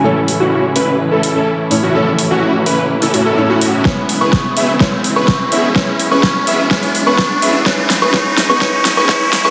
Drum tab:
HH |--o---o---o---o-|--o---o--oo---o-|--o---o---o---o-|--o---o--oo---o-|
SD |----------------|----------------|o---o---o---o---|o---o---o---o---|
BD |----------------|----------------|o---o---o---o---|o---o---o---o---|

HH |--o---o---o---o-|
SD |o-o-o-o-o-o-o-o-|
BD |o---o---o---o---|